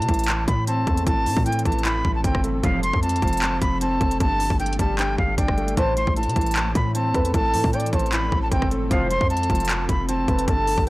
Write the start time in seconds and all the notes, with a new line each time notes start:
Already playing: A2 E3 A3 C4 A4 A5
0.02 closed hi-hat
0.08 A1 E3, kick, closed hi-hat
0.14 closed hi-hat
0.19 closed hi-hat
0.24 closed hi-hat
0.28 A2, clap, closed hi-hat
0.48 A2 B5, kick, closed hi-hat
0.67 C4 A5, closed hi-hat
0.87 E2 A3, kick, closed hi-hat
0.97 closed hi-hat
1.06 A1 A2 A5, kick, closed hi-hat
1.26 A2, open hi-hat
1.37 A2, kick
1.46 A2 G5, closed hi-hat
1.52 closed hi-hat
1.59 closed hi-hat
1.65 A1 E3 A5, kick, closed hi-hat
1.72 closed hi-hat
1.79 closed hi-hat
1.85 A2 B5, clap, closed hi-hat
2.05 A1, kick
2.15 A5
2.24 G1 C4 G5, kick, closed hi-hat
2.35 kick, cross-stick
2.44 A3, closed hi-hat
2.63 F1 C2 F2 A2 F3 F5, kick, closed hi-hat
2.83 F2 C6, closed hi-hat
2.93 F2, kick
3.03 F2 A5, closed hi-hat
3.09 closed hi-hat
3.16 closed hi-hat
3.22 F1 F3, kick, closed hi-hat
3.28 closed hi-hat
3.33 closed hi-hat
3.37 closed hi-hat
3.42 F2, clap, closed hi-hat
3.62 F1 B5, kick, closed hi-hat
3.81 C4 A5, closed hi-hat
4.01 F1 A3, kick, closed hi-hat
4.11 closed hi-hat
4.20 G1 G2 G3 D4 A5, kick, closed hi-hat
4.40 G2, open hi-hat
4.50 G1, kick
4.60 G2 G5, closed hi-hat
4.66 closed hi-hat
4.73 closed hi-hat
4.79 G1 G3 A5, kick, closed hi-hat
4.99 G2 G5, clap, closed hi-hat
5.18 G1 F5, kick
5.38 G1 D4 G5, kick, closed hi-hat
5.48 kick, cross-stick
5.58 A3, closed hi-hat
5.68 closed hi-hat
5.77 A1 C2 A2 E3 C4 A4 C5 A5, kick, closed hi-hat
5.97 A2 C6, closed hi-hat
6.07 A1, kick
6.16 A2 A5, closed hi-hat
6.23 C3, closed hi-hat
6.29 closed hi-hat
6.36 A1 E3, kick, closed hi-hat
6.41 closed hi-hat
6.46 closed hi-hat
6.51 closed hi-hat
6.56 A2, clap, closed hi-hat
6.75 A2 B5, kick, closed hi-hat
6.95 C4 A5, closed hi-hat
7.14 E2 A3 B4, kick, closed hi-hat
7.25 closed hi-hat
7.34 A1 A2 A4 A5, kick, closed hi-hat
7.53 A2, open hi-hat
7.64 A2, kick
7.73 A2 D5 G5, closed hi-hat
7.80 closed hi-hat
7.86 closed hi-hat
7.93 A1 E3 C5 A5, kick, closed hi-hat
7.99 closed hi-hat
8.06 closed hi-hat
8.12 A2 B5, clap, closed hi-hat
8.32 A1, kick
8.43 A5
8.52 G1 C4 G5, kick, closed hi-hat
8.62 kick, cross-stick
8.71 A3, closed hi-hat
8.91 F1 C2 F2 A2 F3 A3 C5 F5, kick, closed hi-hat
9.10 F2 C6, closed hi-hat
9.21 F2, kick
9.30 F2 A5, closed hi-hat
9.37 closed hi-hat
9.43 closed hi-hat
9.50 F1 F3, kick, closed hi-hat
9.55 closed hi-hat
9.60 closed hi-hat
9.65 closed hi-hat
9.69 F2, clap, closed hi-hat
9.89 F1 B5, kick, closed hi-hat
10.09 C4 A5, closed hi-hat
10.28 F1 A3 B4, kick, closed hi-hat
10.39 closed hi-hat
10.48 G1 G2 G3 D4 A4 A5, kick, closed hi-hat
10.67 G2, open hi-hat
10.78 G1, kick